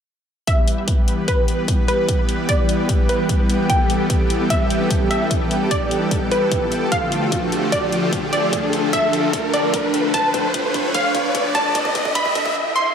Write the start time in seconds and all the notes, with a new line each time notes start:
0.47 E3 G3 B3 G4 B4 E5, kick, closed hi-hat, riser
0.68 closed hi-hat
0.84 B4, kick, closed hi-hat
1.08 closed hi-hat
1.28 B4, kick, closed hi-hat
1.48 closed hi-hat
1.53 G5
1.68 kick, closed hi-hat
1.88 B4, closed hi-hat
2.08 kick, closed hi-hat
2.29 closed hi-hat
2.49 D5, kick, closed hi-hat
2.69 closed hi-hat
2.89 kick, closed hi-hat
3.09 B4, closed hi-hat
3.29 kick, closed hi-hat
3.50 closed hi-hat
3.70 A4 G5, kick, closed hi-hat
3.90 closed hi-hat
4.10 kick, closed hi-hat
4.30 closed hi-hat
4.50 E5, kick, closed hi-hat
4.70 closed hi-hat
4.90 kick, closed hi-hat
5.11 E5, closed hi-hat
5.31 kick, closed hi-hat
5.51 closed hi-hat
5.71 D5, kick, closed hi-hat
5.91 closed hi-hat
6.11 kick, closed hi-hat
6.31 B4, closed hi-hat
6.52 kick, closed hi-hat
6.72 closed hi-hat
6.92 D3 F3 A3 D4 F4 F5, kick, closed hi-hat
7.12 closed hi-hat
7.32 A4, kick, closed hi-hat
7.52 closed hi-hat
7.72 D5, kick, closed hi-hat
7.92 closed hi-hat
8.13 kick, closed hi-hat
8.33 D5, closed hi-hat
8.53 kick, closed hi-hat
8.73 closed hi-hat
8.93 E5, kick, closed hi-hat
9.13 closed hi-hat
9.33 kick, closed hi-hat
9.54 D5, closed hi-hat
9.74 kick, closed hi-hat
9.94 closed hi-hat
10.14 B4 A5, kick, closed hi-hat
10.34 kick, closed hi-hat
10.54 kick, closed hi-hat
10.74 kick, closed hi-hat
10.94 F5, kick, closed hi-hat
11.15 kick, closed hi-hat
11.35 kick, closed hi-hat
11.55 A5, kick, closed hi-hat
11.75 kick, closed hi-hat
11.85 kick
11.95 kick, closed hi-hat
12.05 kick
12.15 B5, kick, closed hi-hat
12.25 kick
12.35 kick, closed hi-hat
12.46 kick
12.56 swell
12.76 C6